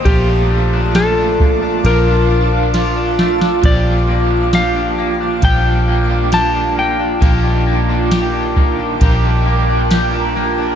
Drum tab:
RD |x---x---x---x---|x---x---x---x---|x---x---x---x---|
TB |----x-----------|----x-------x---|----x-------x---|
SD |----o-------o-oo|----o-------o---|----o-------o---|
BD |o-----o---------|o-------o-------|o-----o-o-------|